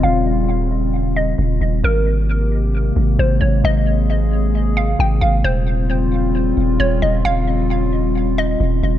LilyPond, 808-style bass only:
\new Staff \with { instrumentName = "808-style bass" } { \clef bass \time 4/4 \key aes \major \tempo 4 = 133 ees,,2. ees,,8 ees,,8 | aes,,2~ aes,,8 aes,,8 aes,,8 aes,,8 | aes,,2. aes,,8 aes,,8 | ees,,2~ ees,,8 ees,,8 ees,,8 ees,,8 |
ees,,2. ees,,8 ees,,8 | }